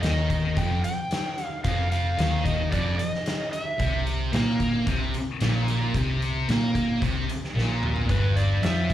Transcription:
0.02 D#2 D#3 D#5, snare, closed hi-hat
0.30 kick, closed hi-hat
0.56 F1 F2 G5, kick, closed hi-hat
0.84 G5, closed hi-hat
1.11 snare, closed hi-hat
1.38 closed hi-hat
1.44 F5
1.64 F1 F2 F5, kick, closed hi-hat
1.92 F5, closed hi-hat
2.18 D#2 D#3, snare, closed hi-hat
2.45 D#5, kick, closed hi-hat
2.71 F1 F2 D5, kick, closed hi-hat
2.99 D#5, closed hi-hat
3.15 snare
3.26 snare, closed hi-hat
3.52 E5, closed hi-hat
3.79 C2 C3, kick, closed hi-hat
4.07 closed hi-hat
4.32 A#2 A#3, snare, closed hi-hat
4.60 kick, closed hi-hat
4.86 C2 C3, kick, closed hi-hat
5.14 closed hi-hat
5.40 A#1 A#2, snare, closed hi-hat
5.68 closed hi-hat
5.94 C2 C3, kick, closed hi-hat
6.22 closed hi-hat
6.48 A#2 A#3, snare, closed hi-hat
6.75 kick, closed hi-hat
7.01 C2 C3, kick, closed hi-hat
7.29 closed hi-hat
7.44 snare
7.54 A#1 A#2
7.58 snare
7.83 mid tom
7.96 floor tom
8.08 G1 G2 B4, kick, closed hi-hat
8.36 D5, closed hi-hat
8.62 F2 F3 E5, snare, closed hi-hat
8.90 kick, closed hi-hat

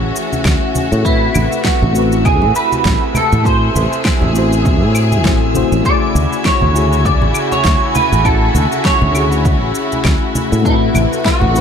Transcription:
Already playing: E3 A3 C#4 E4 F#4 G#4 E5 G#5 E6
0.01 A1
0.16 shaker
0.33 high conga, shaker
0.45 D2, kick, snare, claves, shaker
0.75 high conga, shaker
0.92 A2, shaker
1.02 C3 A3 C4 E4, kick, shaker
1.07 F#4 B4
1.35 A1, high conga, claves, shaker
1.52 shaker
1.64 F#4, kick, snare, shaker
1.82 A1, high conga, low conga
1.92 A3 C4 E4, shaker
1.97 F#4 B4
2.12 shaker
2.25 G#4, kick, high conga, claves, shaker
2.42 A2, low conga
2.55 B4, shaker
2.72 high conga, shaker
2.85 A1, kick, snare, shaker
3.15 A4, high conga, claves, shaker
3.32 A2, low conga, shaker
3.42 A3 C4 E4 G#4, kick, shaker
3.46 F#4 C5
3.75 A1, high conga, shaker
3.93 shaker
4.05 kick, snare, claves, shaker
4.21 A1, high conga, low conga
4.33 A3 C4 E4 F#4, shaker
4.38 C5
4.53 shaker
4.65 kick, high conga, shaker
4.83 A2
4.95 claves, shaker
5.12 high conga, shaker
5.23 A1 A3 C4 E4 F#4 C5, kick, snare, shaker
5.54 A3 C4 E4 F#4 C5, high conga, shaker
5.72 A1, shaker
5.83 C#3 A3 E4 F#4 D5 G#5, kick, shaker
5.88 G#4
6.15 D2, high conga, shaker
6.33 shaker
6.45 C#5, kick, snare, claves, shaker
6.62 D2, high conga, low conga
6.72 C#3 A3 E4
6.76 F#4 G#4, shaker
6.93 shaker
7.05 D5, kick, high conga, shaker
7.22 A1, low conga
7.34 claves, shaker
7.52 C#5, high conga, shaker
7.65 D2, kick, snare, shaker
7.95 B4, high conga, shaker
8.12 A1, low conga, shaker
8.22 A3 C#4 E4 A4, kick, claves, shaker
8.27 F#4 G#5
8.55 D2, high conga, shaker
8.72 shaker
8.85 C#5, kick, snare, shaker
9.02 D2, high conga, low conga
9.12 A3 C#4 E4, claves, shaker
9.16 F#4 G#4
9.32 shaker
9.45 kick, high conga, shaker
9.62 A1
9.75 shaker
9.92 high conga, shaker
10.05 D2, kick, snare, claves, shaker
10.35 high conga, shaker
10.52 A2, shaker
10.62 C3 A3 C4 E4 F#4, kick, shaker
10.66 F#4 B4
10.94 A1, high conga, claves, shaker
11.13 shaker
11.25 F#4, kick, snare, shaker
11.41 A1, high conga, low conga
11.51 A3 C4 E4
11.56 F#4 B4, shaker

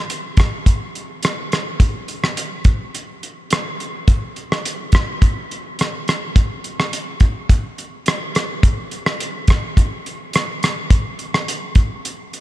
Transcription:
0.10 closed hi-hat
0.37 kick, cross-stick, closed hi-hat
0.66 kick, closed hi-hat
0.95 closed hi-hat
1.23 cross-stick, closed hi-hat
1.52 cross-stick, closed hi-hat
1.80 kick, closed hi-hat
2.08 closed hi-hat
2.24 cross-stick
2.37 closed hi-hat
2.64 kick, closed hi-hat
2.95 closed hi-hat
3.23 closed hi-hat
3.50 cross-stick, closed hi-hat
3.80 closed hi-hat
4.08 kick, closed hi-hat
4.36 closed hi-hat
4.52 cross-stick
4.65 closed hi-hat
4.92 kick, cross-stick, closed hi-hat
5.22 kick, closed hi-hat
5.51 closed hi-hat
5.79 cross-stick, closed hi-hat
6.08 cross-stick, closed hi-hat
6.36 kick, closed hi-hat
6.64 closed hi-hat
6.80 cross-stick
6.93 closed hi-hat
7.20 kick, closed hi-hat
7.49 kick, closed hi-hat
7.78 closed hi-hat
8.06 cross-stick, closed hi-hat
8.35 cross-stick, closed hi-hat
8.63 kick, closed hi-hat
8.91 closed hi-hat
9.06 cross-stick
9.20 closed hi-hat
9.47 kick, cross-stick, closed hi-hat
9.77 kick, closed hi-hat
10.06 closed hi-hat
10.33 cross-stick, closed hi-hat
10.63 cross-stick, closed hi-hat
10.90 kick, closed hi-hat
11.19 closed hi-hat
11.34 cross-stick
11.48 closed hi-hat
11.75 kick, closed hi-hat
12.05 closed hi-hat
12.33 closed hi-hat

